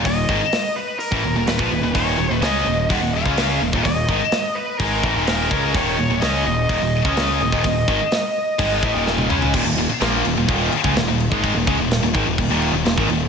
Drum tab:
CC |----------------|----------------|----------------|----------------|
HH |o---o---o---o---|o---o---o---o---|o---o---o---o---|o---o---o---o---|
SD |----o-------o---|----o-------o---|----o-------o---|----o-------o---|
T1 |----------------|----------------|----------------|----------------|
T2 |----------------|----------------|----------------|----------------|
FT |----------------|----------------|----------------|----------------|
BD |o-o------o---o--|o-------o--o---o|o-o-----o-o---o-|o-------o--o---o|

CC |----------------|x-x-x-x-x-x-x-x-|x-x-x-x-x-x-x-x-|
HH |o---o---o-------|----------------|----------------|
SD |----o-------o---|----o-------o---|----o-------o---|
T1 |-------------o--|----------------|----------------|
T2 |--------------o-|----------------|----------------|
FT |---------------o|----------------|----------------|
BD |o-o-----o-o-----|o-------o--o---o|o-o---o-o----o--|